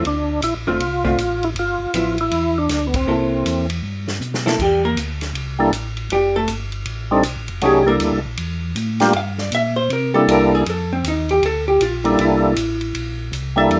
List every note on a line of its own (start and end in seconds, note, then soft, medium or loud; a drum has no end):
0.05 0.42 D2 medium
0.05 0.41 D4 medium
0.05 ride medium
0.42 0.55 A#1 medium
0.42 0.54 E4 medium
0.42 hi-hat pedal soft
0.42 ride medium
0.55 0.68 A1 soft
0.67 0.79 F1 medium
0.67 0.79 D3 medium
0.67 0.79 A3 medium
0.67 0.79 C4 medium
0.67 1.45 F4 medium
0.67 0.80 F4 medium
0.80 1.17 C2 medium
0.80 ride medium
1.04 1.17 D3 medium
1.04 1.17 A3 medium
1.04 1.17 C4 medium
1.04 1.17 F4 medium
1.04 kick medium
1.17 1.54 A1 medium
1.17 hi-hat pedal soft
1.17 ride medium
1.43 1.50 E4 medium
1.43 ride soft
1.55 1.78 G1 medium
1.55 2.16 F4 medium
1.55 ride medium
1.80 1.87 G1 soft
1.93 2.30 A1 medium
1.93 2.16 F3 soft
1.93 2.16 B3 soft
1.93 2.16 E4 medium
1.93 hi-hat pedal medium
1.93 ride medium
2.18 2.58 E4 medium
2.18 ride soft
2.31 2.68 E2 medium
2.31 ride medium
2.58 2.87 D4 medium
2.69 3.06 D2 medium
2.69 snare soft
2.69 hi-hat pedal medium
2.69 ride medium
2.87 2.95 B3 medium
2.94 3.66 C4 medium
2.94 kick medium
2.94 ride medium
3.07 3.44 C2 medium
3.07 3.65 A#3 medium
3.07 3.65 E4 soft
3.07 3.65 A4 medium
3.45 3.82 E2 medium
3.45 hi-hat pedal medium
3.45 ride medium
3.70 ride medium
3.83 4.20 G2 medium
4.08 snare soft
4.20 4.57 B2 medium
4.20 hi-hat pedal medium
4.34 snare medium
4.46 4.58 A#3 soft
4.46 4.58 E4 medium
4.46 4.59 A4 medium
4.46 snare medium
4.59 4.96 E2 medium
4.59 4.84 G3 medium
4.59 4.84 G4 medium
4.59 kick medium
4.59 crash medium
4.85 4.97 A#3 medium
4.85 4.97 A#4 medium
4.95 5.33 D2 medium
4.95 hi-hat pedal medium
4.95 ride medium
5.21 snare soft
5.21 ride soft
5.34 5.71 C2 medium
5.34 ride medium
5.59 5.71 G3 medium
5.59 5.72 A#3 medium
5.59 5.72 D4 medium
5.59 5.72 E4 medium
5.59 5.72 A4 medium
5.72 6.09 A1 medium
5.72 hi-hat pedal medium
5.72 ride medium
5.97 ride soft
6.10 6.47 F1 medium
6.10 6.35 G3 medium
6.10 6.35 G4 medium
6.10 ride medium
6.36 6.49 A3 medium
6.36 6.49 A4 medium
6.48 6.85 G1 medium
6.48 hi-hat pedal medium
6.48 ride medium
6.72 ride soft
6.86 7.23 A1 medium
6.86 ride medium
7.11 7.23 G3 medium
7.11 7.24 C4 medium
7.11 7.23 D4 medium
7.11 7.24 D#4 medium
7.11 7.24 A4 medium
7.23 7.36 B1 medium
7.23 hi-hat pedal medium
7.23 ride medium
7.36 7.49 A1 medium
7.48 7.61 F1 medium
7.48 ride soft
7.61 7.99 C2 medium
7.61 7.84 F#3 medium
7.61 7.84 A3 medium
7.61 7.85 C#4 medium
7.61 7.85 D#4 medium
7.61 7.85 G#4 medium
7.61 ride medium
7.66 7.88 G3 medium
7.66 7.88 G4 medium
7.86 8.19 G3 medium
7.86 8.19 A#3 soft
7.86 7.96 A#3 medium
7.86 8.20 D4 medium
7.86 8.20 E4 soft
7.86 8.20 A4 medium
7.86 7.96 A#4 medium
8.00 8.12 D2 medium
8.00 hi-hat pedal medium
8.00 ride medium
8.12 8.25 C2 soft
8.25 8.37 A#1 medium
8.37 8.75 E2 medium
8.37 ride medium
8.75 9.13 A2 medium
8.75 hi-hat pedal medium
8.75 ride medium
9.00 9.13 G3 medium
9.00 9.13 A#3 medium
9.00 9.13 D4 medium
9.00 9.14 F4 medium
9.00 9.14 G4 medium
9.00 snare soft
9.00 ride soft
9.13 9.51 G2 medium
9.13 9.39 F5 medium
9.13 ride medium
9.38 9.52 D5 medium
9.38 snare soft
9.52 9.89 A#2 medium
9.52 9.76 E5 loud
9.52 hi-hat pedal medium
9.52 ride medium
9.76 9.90 C5 medium
9.90 10.27 C3 medium
9.90 10.14 A#4 medium
9.90 ride medium
10.14 10.63 G3 medium
10.14 10.64 A#3 medium
10.14 10.64 D4 medium
10.14 10.64 E4 medium
10.14 10.28 A4 medium
10.14 10.64 A4 medium
10.27 10.65 C2 medium
10.27 hi-hat pedal medium
10.27 ride medium
10.32 10.54 A#4 medium
10.55 10.70 G#4 medium
10.66 11.03 F2 medium
10.66 10.91 A4 medium
10.66 ride medium
10.93 11.05 C4 medium
11.04 11.41 D#2 medium
11.04 hi-hat pedal medium
11.04 ride medium
11.08 11.30 D#4 medium
11.29 11.43 G4 medium
11.29 ride soft
11.42 11.79 D2 medium
11.42 11.67 A4 medium
11.42 ride medium
11.68 11.81 G4 medium
11.80 12.17 A#1 medium
11.80 12.06 F4 medium
11.80 hi-hat pedal soft
11.80 ride medium
12.05 12.53 G3 medium
12.05 12.54 A#3 medium
12.05 12.54 D4 medium
12.05 12.18 D#4 medium
12.05 12.54 E4 medium
12.05 12.54 A4 medium
12.05 ride soft
12.19 12.55 C2 medium
12.19 13.30 E4 medium
12.19 ride medium
12.56 12.93 A1 medium
12.56 hi-hat pedal medium
12.56 ride medium
12.81 ride soft
12.94 13.31 A#1 medium
12.94 ride medium
13.32 13.69 C2 medium
13.32 hi-hat pedal soft
13.32 ride medium
13.56 13.80 G3 medium
13.56 13.80 A#3 medium
13.56 13.80 D4 medium
13.56 13.80 E4 medium
13.56 13.80 A4 medium
13.56 13.80 E5 medium
13.69 13.80 E2 medium
13.69 ride medium